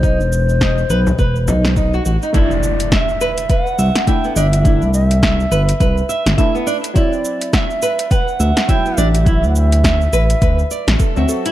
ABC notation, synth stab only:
X:1
M:4/4
L:1/16
Q:"Swing 16ths" 1/4=104
K:Clyd
V:1 name="Synth stab"
z16 | [A,DE]12 [A,DE]4 | [A,DE]12 [A,DE]4 | [F,CE]12 [F,E]4 |
[F,E]12 z [F,CF]3 |]